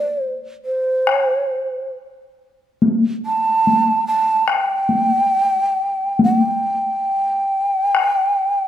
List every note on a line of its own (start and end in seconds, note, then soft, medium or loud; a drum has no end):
0.00 0.22 D5 medium
0.22 0.34 C5 medium
0.65 1.11 C5 medium
1.07 taiko rim medium
1.11 1.23 C#5 medium
1.23 1.36 C5 medium
1.36 1.48 C#5 medium
1.48 1.93 C5 medium
2.82 taiko high soft
3.26 4.05 A5 loud
3.67 taiko high soft
4.07 4.50 A5 medium
4.48 6.20 G5 loud
4.48 taiko rim medium
4.89 taiko high soft
6.19 taiko high soft
6.24 6.38 F#5 medium
6.38 8.68 G5 medium
7.95 taiko rim soft